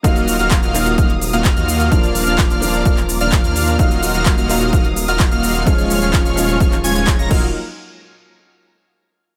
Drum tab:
CC |----------------|----------------|----------------|--------------x-|
HH |xxoxxxoxxxoxxxox|xxoxxxoxxxoxxxox|xxoxxxoxxxoxxxox|xxoxxxoxxxoxxx--|
SH |xxxxxxxxx-xxxxxx|xxxxxxxxxxxxxxxx|xxxxxxxxx-xxxxxx|xxxxxxxxxxxxxx--|
CP |----x-x-----x---|----x----x--x---|----x-x-----x---|----x----x--x---|
BD |o---o---o---o---|o---o---o---o---|o---o---o---o---|o---o---o---o-o-|

CC |----------------|
HH |----------------|
SH |----------------|
CP |----------------|
BD |----------------|